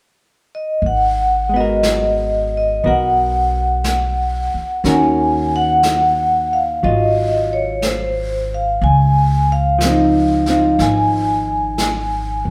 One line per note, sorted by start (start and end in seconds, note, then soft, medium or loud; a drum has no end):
0.55 0.85 D#5 medium
0.82 2.80 G#1 medium
0.82 brush sweep soft
0.86 1.56 F#5 medium
1.49 4.83 G#3 soft
1.54 2.83 B3 soft
1.54 2.85 F#4 soft
1.54 2.56 D#5 medium
1.60 2.85 A#4 soft
1.83 brush sweep soft
1.83 snare soft
1.83 hi-hat pedal soft
2.57 2.87 D#5 medium
2.83 4.49 B1 medium
2.83 4.84 B3 soft
2.83 4.85 F#4 soft
2.83 4.85 A#4 soft
2.83 brush sweep soft
2.88 4.92 F#5 medium
3.84 brush sweep soft
3.84 snare soft
3.84 hi-hat pedal soft
4.54 muted upright bass stroke soft
4.84 6.78 D#2 medium
4.84 6.83 D#3 soft
4.84 6.83 C#4 soft
4.84 6.83 F#4 soft
4.84 6.83 A#4 soft
4.84 brush sweep soft
4.84 snare soft
4.88 5.51 G#5 medium
5.56 6.56 F#5 medium
5.83 brush sweep soft
5.83 snare soft
5.83 hi-hat pedal soft
6.53 6.84 F5 medium
6.82 8.77 G#1 medium
6.82 8.81 F#3 soft
6.82 8.81 F4 soft
6.82 7.54 D#5 medium
6.82 brush sweep soft
7.53 7.84 C#5 medium
7.82 8.53 C5 medium
7.82 brush sweep soft
7.82 snare soft
7.82 hi-hat pedal soft
8.54 8.84 F5 medium
8.80 10.75 C#2 medium
8.80 9.52 G#5 medium
8.80 brush sweep soft
9.52 10.50 F5 medium
9.79 10.46 F3 soft
9.79 brush sweep soft
9.79 snare soft
9.79 hi-hat pedal medium
9.85 10.48 C4 soft
9.90 10.49 D#4 medium
10.46 12.50 F3 soft
10.46 12.50 C4 soft
10.46 snare soft
10.51 12.50 D#4 soft
10.51 10.81 F5 medium
10.79 12.41 G#1 medium
10.79 12.50 G#5 medium
10.79 brush sweep soft
10.79 snare soft
11.78 brush sweep soft
11.78 snare soft
11.78 hi-hat pedal soft
12.45 12.50 A1 medium